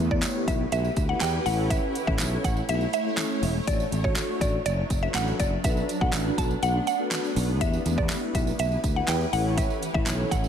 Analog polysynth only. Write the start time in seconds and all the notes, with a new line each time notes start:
0.11 B3 E4 G4 C#5
1.09 B3 E4 G4 B4
1.46 C#4 E4 A4 C#5
2.07 C#4 E4 A4 C#5
3.06 C#4 E4 A4 C#5
3.67 D4 F#4 A4 C#5
4.04 D4 F#4 A4 C#5
5.03 D4 F#4 A4 B4
5.64 D4 F#4 A4 B4
6.01 D4 F#4 A4 B4
6.99 D4 F#4 A4 B4
7.61 B3 E4 G4 B4
7.98 B3 E4 G4 B4
8.96 B3 E4 G4 B4
9.33 C#4 E4 A4 C#5
9.94 C#4 E4 A4 C#5